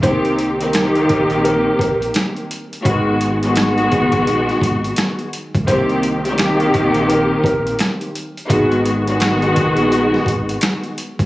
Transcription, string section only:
0.02 D#3 A#3 C4 G4
0.60 D#3 A#3 C4 G4
2.83 D#3 G#3 B3 F#4
3.43 D#3 G#3 B3 F#4
5.67 D#3 A#3 C4 G4
6.25 D#3 A#3 C4 G4
8.48 D#3 G#3 B3 F#4
9.07 D#3 G#3 B3 F#4

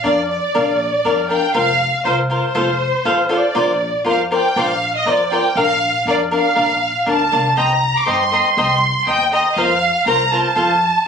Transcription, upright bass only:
0.04 F2
0.55 A#1
1.05 F2
1.55 F1
2.05 C2
2.55 F1
3.05 A1
3.56 A#1
4.05 F2
4.56 A#1
5.06 F2
5.55 A#1
6.05 F2
6.56 A#1
7.07 D2
7.33 C2
7.57 C2
8.07 G2
8.57 C2
9.07 D#2
9.56 F2
10.06 C2
10.56 F2

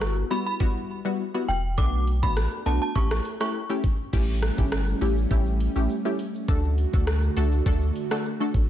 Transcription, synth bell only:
0.31 B5
0.46 B5
1.48 G5
1.78 D6
2.23 B5
2.66 A5
2.82 A5
2.96 C#6
3.41 C#6

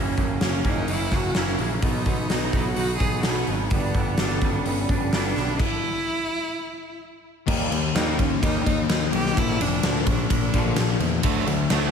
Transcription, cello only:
Already playing: C#4
0.69 D#4
0.93 E4
1.15 F#4
1.38 E4
1.82 D#4
2.50 E4
2.72 F#4
2.96 G#4
3.21 F#4
3.72 B3
4.42 C#4
5.14 D4
5.60 E4
7.94 D#4
8.19 C#4
8.43 D#4
8.66 D#4
8.90 D#4
9.13 G4
9.38 E4
9.62 D4
10.10 D4
10.31 D4
11.70 D4

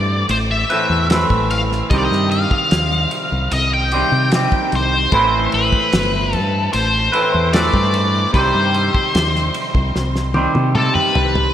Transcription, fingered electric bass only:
Already playing: G2
0.29 A1
0.90 E2
1.30 A1
1.91 C2
2.11 G2
2.72 D#2
3.32 C2
3.52 C2
4.12 C3
4.73 C2
5.13 A1
5.54 A1
5.93 G1
6.34 G2
6.74 A1
7.34 E2
7.74 G2
8.34 C2
8.55 G2
9.15 D#2
9.75 C2
9.95 C2
10.56 C3
11.16 C2

